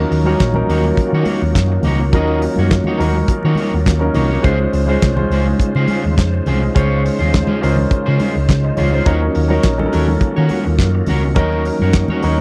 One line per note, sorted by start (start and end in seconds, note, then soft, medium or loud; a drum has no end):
0.00 4.40 D#3 medium
0.00 0.21 F#3 medium
0.00 4.41 A#3 medium
0.00 0.21 C#4 medium
0.00 4.41 C#4 medium
0.00 0.21 D#4 medium
0.00 9.03 F4 medium
0.00 4.40 F#4 medium
0.00 0.21 A#4 medium
0.11 0.33 D#2 medium
0.11 muted clean electric guitar stroke soft
0.11 open hi-hat medium
0.24 0.51 F#3 medium
0.24 0.51 C#4 medium
0.24 0.52 D#4 medium
0.24 0.41 F#4 medium
0.24 0.52 A#4 medium
0.24 0.41 C#5 medium
0.24 high conga medium
0.28 0.42 A#3 soft
0.28 0.42 D#4 medium
0.39 0.62 A#1 medium
0.39 kick loud
0.39 snare loud
0.39 clap medium
0.39 closed hi-hat medium
0.39 muted conga soft
0.54 1.56 F#3 medium
0.54 1.56 C#4 medium
0.54 1.57 D#4 medium
0.54 1.57 A#4 medium
0.54 muted clean electric guitar stroke soft
0.54 muted conga soft
0.54 high conga medium
0.54 low conga medium
0.69 0.90 D#2 medium
0.69 0.89 A#3 medium
0.69 0.86 D#4 loud
0.69 0.86 F#4 medium
0.69 0.85 C#5 medium
0.69 open hi-hat medium
0.83 muted clean electric guitar stroke soft
0.83 high conga medium
0.97 muted picked electric bass stroke soft
0.97 muted clean electric guitar stroke soft
0.97 kick medium
0.97 closed hi-hat medium
1.13 1.23 D#3 medium
1.13 1.25 A#3 medium
1.13 1.26 D#4 medium
1.13 1.27 F#4 medium
1.13 1.27 C#5 medium
1.25 1.42 A#3 medium
1.25 1.43 D#4 medium
1.25 1.42 F#4 medium
1.25 1.41 C#5 medium
1.25 open hi-hat medium
1.25 high conga medium
1.42 1.52 D#2 medium
1.42 muted clean electric guitar stroke soft
1.42 high conga medium
1.55 1.77 F#2 medium
1.55 kick loud
1.55 snare loud
1.55 clap medium
1.55 closed hi-hat medium
1.55 muted conga soft
1.72 muted clean electric guitar stroke soft
1.83 2.14 C#2 medium
1.83 2.04 A#3 medium
1.83 2.01 D#4 medium
1.83 2.00 F#4 medium
1.83 1.99 C#5 medium
1.83 open hi-hat medium
1.83 high conga medium
1.83 low conga medium
2.01 muted clean electric guitar stroke soft
2.12 2.46 D#2 medium
2.12 2.90 F#3 medium
2.12 2.41 A#3 medium
2.12 2.91 C#4 medium
2.12 2.91 D#4 medium
2.12 2.41 D#4 medium
2.12 2.41 F#4 loud
2.12 2.91 A#4 medium
2.12 kick loud
2.12 closed hi-hat medium
2.12 muted conga soft
2.16 2.41 D#5 medium
2.28 muted conga soft
2.42 muted clean electric guitar stroke soft
2.42 open hi-hat medium
2.56 2.79 F#2 medium
2.56 2.72 C#5 medium
2.56 high conga medium
2.60 2.71 A#3 soft
2.60 2.72 D#4 soft
2.60 2.73 F#4 medium
2.71 muted clean electric guitar stroke soft
2.71 kick loud
2.71 snare loud
2.71 clap medium
2.71 closed hi-hat medium
2.84 3.00 F#4 medium
2.84 3.01 C#5 medium
2.84 high conga medium
2.84 low conga medium
2.88 2.99 A#3 medium
2.88 2.99 D#4 medium
2.98 3.21 D#2 medium
2.98 3.89 F#3 medium
2.98 3.16 A#3 medium
2.98 3.89 C#4 medium
2.98 3.89 D#4 medium
2.98 3.16 D#4 medium
2.98 3.16 F#4 medium
2.98 3.89 A#4 medium
2.98 3.16 C#5 medium
2.98 open hi-hat medium
3.13 high conga medium
3.17 muted clean electric guitar stroke soft
3.26 muted picked electric bass stroke soft
3.26 muted clean electric guitar stroke soft
3.26 kick loud
3.26 closed hi-hat medium
3.26 muted conga soft
3.43 3.54 D#3 medium
3.43 3.59 D#4 medium
3.43 3.60 F#4 medium
3.43 3.60 C#5 medium
3.43 muted conga soft
3.47 3.59 A#3 medium
3.55 open hi-hat medium
3.55 high conga medium
3.60 3.75 A#3 medium
3.60 3.74 D#4 medium
3.60 3.74 F#4 medium
3.60 3.73 C#5 medium
3.71 3.84 D#2 medium
3.71 muted clean electric guitar stroke soft
3.71 high conga soft
3.86 4.08 D#2 loud
3.86 muted clean electric guitar stroke soft
3.86 kick loud
3.86 snare loud
3.86 clap medium
3.86 closed hi-hat medium
3.86 muted conga soft
3.99 4.38 F#3 medium
3.99 4.39 C#4 medium
3.99 4.39 D#4 medium
3.99 4.39 A#4 medium
3.99 muted clean electric guitar stroke soft
3.99 muted conga soft
4.14 4.37 C2 medium
4.14 4.31 A#3 medium
4.14 4.31 D#4 loud
4.14 4.30 F#4 medium
4.14 4.29 C#5 loud
4.14 open hi-hat medium
4.14 high conga medium
4.14 low conga medium
4.31 4.43 A#3 soft
4.31 4.43 D#4 soft
4.31 4.44 F#4 medium
4.31 4.45 C#5 medium
4.42 4.66 C#2 medium
4.42 9.02 C#3 medium
4.42 4.82 G#3 medium
4.42 4.64 G#3 medium
4.42 9.02 G#3 medium
4.42 4.82 C#4 medium
4.42 4.59 C#4 medium
4.42 9.02 D#4 medium
4.42 4.82 F4 medium
4.42 4.59 F4 medium
4.42 4.83 C5 loud
4.42 9.02 C5 medium
4.42 4.58 C5 loud
4.42 kick loud
4.42 closed hi-hat medium
4.42 muted conga soft
4.59 muted clean electric guitar stroke soft
4.59 muted conga soft
4.73 4.95 C#2 loud
4.73 muted clean electric guitar stroke soft
4.73 open hi-hat medium
4.86 5.13 G#3 medium
4.86 5.13 C#4 medium
4.86 5.04 C#4 medium
4.86 5.14 F4 medium
4.86 5.03 F4 medium
4.86 5.14 C5 medium
4.86 5.03 C5 medium
4.86 high conga medium
4.91 5.04 G#3 medium
5.02 5.24 C2 medium
5.02 kick loud
5.02 snare loud
5.02 clap medium
5.02 closed hi-hat medium
5.02 muted conga soft
5.15 6.18 G#3 medium
5.15 6.18 C#4 medium
5.15 6.18 F4 medium
5.15 6.18 C5 medium
5.15 muted clean electric guitar stroke soft
5.15 muted conga soft
5.15 high conga medium
5.15 low conga medium
5.30 5.52 C#2 medium
5.30 5.51 G#3 medium
5.30 5.47 C#4 medium
5.30 5.47 F4 medium
5.30 5.46 C5 medium
5.30 open hi-hat medium
5.46 muted clean electric guitar stroke soft
5.46 high conga medium
5.60 muted picked electric bass stroke soft
5.60 muted clean electric guitar stroke soft
5.60 kick loud
5.60 closed hi-hat medium
5.75 5.85 C#3 medium
5.75 5.89 G#3 medium
5.75 5.90 C#4 medium
5.75 5.90 F4 medium
5.75 5.91 C5 medium
5.75 muted conga soft
5.88 6.05 G#3 medium
5.88 6.04 C#4 medium
5.88 open hi-hat medium
5.88 high conga medium
5.92 6.04 F4 medium
5.92 6.04 C5 medium
6.04 6.15 D#2 medium
6.04 muted clean electric guitar stroke soft
6.04 high conga medium
6.18 6.39 F2 loud
6.18 kick loud
6.18 snare loud
6.18 clap medium
6.18 closed hi-hat medium
6.18 muted conga soft
6.34 muted clean electric guitar stroke soft
6.34 muted conga soft
6.46 6.69 C2 medium
6.46 6.66 G#3 medium
6.46 6.63 C#4 medium
6.46 6.63 F4 medium
6.46 6.62 C5 medium
6.46 open hi-hat soft
6.46 high conga medium
6.46 low conga medium
6.64 muted clean electric guitar stroke soft
6.75 7.08 C#2 loud
6.75 7.52 G#3 medium
6.75 7.02 G#3 medium
6.75 7.52 C#4 medium
6.75 7.02 C#4 medium
6.75 7.52 F4 medium
6.75 7.02 F4 medium
6.75 7.53 C5 medium
6.75 7.02 C#5 medium
6.75 kick loud
6.75 closed hi-hat medium
6.75 muted conga soft
7.05 muted clean electric guitar stroke soft
7.05 open hi-hat medium
7.19 7.42 D#2 medium
7.19 7.32 G#3 soft
7.19 7.33 C#4 medium
7.19 7.33 F4 medium
7.19 7.33 C5 medium
7.19 high conga medium
7.33 muted clean electric guitar stroke soft
7.33 kick loud
7.33 snare loud
7.33 clap medium
7.33 closed hi-hat medium
7.33 muted conga soft
7.47 7.60 G#3 medium
7.47 7.61 C#4 medium
7.47 7.61 F4 medium
7.47 7.62 C5 medium
7.47 high conga medium
7.47 low conga medium
7.61 7.84 C#2 medium
7.61 7.77 G#3 medium
7.61 8.51 G#3 medium
7.61 7.78 C#4 medium
7.61 8.52 C#4 medium
7.61 7.77 F4 medium
7.61 8.49 F4 medium
7.61 7.69 A#4 medium
7.61 7.76 C5 medium
7.61 open hi-hat medium
7.70 8.52 C5 medium
7.76 muted clean electric guitar stroke soft
7.76 high conga medium
7.76 low conga medium
7.91 muted clean electric guitar stroke soft
7.91 muted picked electric bass stroke soft
7.91 kick loud
7.91 closed hi-hat medium
8.06 8.17 C#3 medium
8.06 8.19 G#3 medium
8.06 8.20 C#4 medium
8.06 8.21 F4 medium
8.06 8.21 C5 medium
8.06 muted conga soft
8.19 8.36 G#3 medium
8.19 8.36 C#4 medium
8.19 8.35 F4 medium
8.19 8.35 C5 medium
8.19 open hi-hat medium
8.19 high conga medium
8.35 8.46 C#2 medium
8.35 muted clean electric guitar stroke medium
8.35 high conga medium
8.49 8.70 C#2 medium
8.49 muted clean electric guitar stroke soft
8.49 kick loud
8.49 snare loud
8.49 clap medium
8.49 closed hi-hat medium
8.64 8.77 D#5 medium
8.64 muted clean electric guitar stroke soft
8.77 8.99 C#2 medium
8.77 8.94 G#3 medium
8.77 8.93 C#4 medium
8.77 8.92 F4 medium
8.77 8.93 F4 medium
8.77 8.92 C5 medium
8.77 8.92 C#5 medium
8.77 open hi-hat medium
8.77 high conga medium
8.77 low conga medium
8.93 9.05 G#3 soft
8.93 9.05 C#4 medium
8.93 9.04 D#4 medium
8.93 9.06 F4 medium
8.93 9.20 C5 medium
8.93 9.07 C5 medium
9.05 9.28 D#2 medium
9.05 12.41 D#3 medium
9.05 9.44 F#3 medium
9.05 12.41 A#3 medium
9.05 9.45 C#4 medium
9.05 9.26 C#4 medium
9.05 12.41 C#4 medium
9.05 9.45 D#4 medium
9.05 11.35 F4 medium
9.05 9.21 F#4 medium
9.05 12.41 F#4 medium
9.05 9.45 A#4 medium
9.05 9.21 A#4 medium
9.05 9.21 C#5 medium
9.05 kick loud
9.05 closed hi-hat medium
9.05 muted conga soft
9.22 muted clean electric guitar stroke soft
9.22 muted conga soft
9.35 9.57 D#2 medium
9.35 muted clean electric guitar stroke soft
9.35 open hi-hat medium
9.48 9.75 F#3 medium
9.48 9.75 C#4 medium
9.48 9.65 C#4 soft
9.48 9.75 D#4 medium
9.48 9.65 F#4 medium
9.48 9.75 A#4 medium
9.48 9.65 A#4 medium
9.48 9.64 C#5 medium
9.48 high conga medium
9.63 9.85 A#1 loud
9.63 kick loud
9.63 snare loud
9.63 clap medium
9.63 closed hi-hat medium
9.78 10.80 F#3 medium
9.78 10.80 C#4 medium
9.78 10.80 D#4 medium
9.78 9.85 A4 medium
9.78 muted clean electric guitar stroke medium
9.78 muted conga soft
9.78 high conga medium
9.78 low conga medium
9.86 10.84 A#4 medium
9.92 10.15 D#2 medium
9.92 10.12 C#4 medium
9.92 10.08 F#4 medium
9.92 10.08 A#4 medium
9.92 10.07 C#5 loud
9.92 open hi-hat medium
10.08 muted clean electric guitar stroke soft
10.08 high conga medium
10.21 muted clean electric guitar stroke soft
10.21 muted picked electric bass stroke soft
10.21 kick loud
10.21 closed hi-hat medium
10.21 muted conga soft
10.36 10.47 D#3 medium
10.36 10.49 C#4 medium
10.36 10.49 F#4 medium
10.36 10.50 A#4 medium
10.36 10.50 C#5 medium
10.36 muted conga soft
10.49 10.66 C#4 medium
10.49 10.66 F#4 medium
10.49 10.65 A#4 medium
10.49 10.64 C#5 medium
10.49 open hi-hat medium
10.49 high conga medium
10.65 10.76 D#2 medium
10.65 muted clean electric guitar stroke soft
10.65 high conga medium
10.79 11.00 F#2 loud
10.79 kick loud
10.79 snare loud
10.79 clap medium
10.79 closed hi-hat medium
10.95 muted clean electric guitar stroke soft
11.06 11.36 C#2 medium
11.06 11.28 C#4 medium
11.06 11.24 F#4 medium
11.06 11.24 A#4 loud
11.06 11.23 C#5 medium
11.06 open hi-hat medium
11.06 high conga medium
11.06 low conga medium
11.24 muted clean electric guitar stroke soft
11.35 11.69 D#2 medium
11.35 12.13 F#3 medium
11.35 12.13 C#4 medium
11.35 11.63 C#4 medium
11.35 12.13 D#4 medium
11.35 12.41 D#4 medium
11.35 11.64 F#4 medium
11.35 12.14 A#4 medium
11.35 11.64 A#4 medium
11.35 11.64 D#5 medium
11.35 kick loud
11.35 closed hi-hat medium
11.35 muted conga soft
11.53 muted conga soft
11.65 muted clean electric guitar stroke soft
11.65 open hi-hat medium
11.79 12.03 F#2 medium
11.79 11.95 F#4 medium
11.79 11.95 A#4 medium
11.79 11.96 C#5 medium
11.79 high conga medium
11.84 11.95 C#4 soft
11.93 muted clean electric guitar stroke soft
11.93 kick loud
11.93 snare loud
11.93 clap medium
11.93 closed hi-hat medium
12.08 12.23 F#4 medium
12.08 12.23 A#4 medium
12.08 12.23 C#5 medium
12.08 muted conga soft
12.08 high conga medium
12.08 low conga medium
12.12 12.22 C#4 medium
12.22 12.41 D#2 medium
12.22 12.41 F#3 medium
12.22 12.41 C#4 medium
12.22 12.39 C#4 medium
12.22 12.41 D#4 medium
12.22 12.39 F#4 medium
12.22 12.41 A#4 medium
12.22 12.39 A#4 medium
12.22 12.37 C#5 medium
12.22 open hi-hat medium
12.37 high conga medium